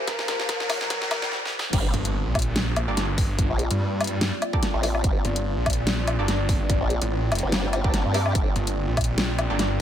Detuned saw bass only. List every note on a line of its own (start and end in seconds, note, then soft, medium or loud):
1.94 2.24 G1 loud
2.26 2.86 A#1 medium
2.88 3.48 G1 loud
3.71 4.31 G2 loud
5.25 5.55 G1 loud
5.57 6.17 A#1 loud
6.19 6.79 G1 loud
7.02 7.30 A1 loud
7.32 7.41 F1 loud
8.56 8.86 G1 loud
8.88 9.48 A#1 medium
9.50 9.81 G1 loud